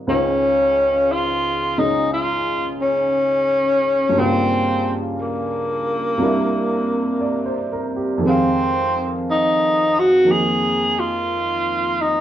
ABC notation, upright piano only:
X:1
M:4/4
L:1/16
Q:"Swing" 1/4=59
K:Db
V:1 name="Upright piano"
z16 | z12 =d c B =G | z16 |]
V:2 name="Upright piano"
[D,,D,EFc]6 [D,A,DE]8- [D,A,DE]2 | [=G,,D,=G,B,F]8 [C,G,B,=D=E]8 | [F,,E,A,Cf]8 [E,F,B,E]8 |]